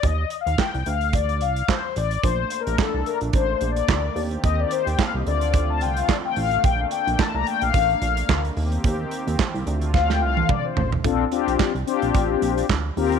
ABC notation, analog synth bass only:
X:1
M:4/4
L:1/16
Q:"Swing 16ths" 1/4=109
K:Bb
V:1 name="Analog synth bass" clef=bass
E,,2 z E,, z C,, D,,4 C,,2 z2 A,,,2 | B,,,2 z B,,, z C,, z B,,, A,,,2 B,,,2 D,,2 E,,2 | E,,2 z E,, z C,, D,,4 C,,2 z2 A,,,2 | B,,,2 z B,,, z C,, z B,,, A,,,2 B,,,2 D,,2 E,,2 |
E,,2 z E,, z C,, D,,4 C,,2 z2 A,,,2 | B,,,2 z B,,, z C,, z B,,, A,,,2 B,,,2 D,,2 E,,2 |]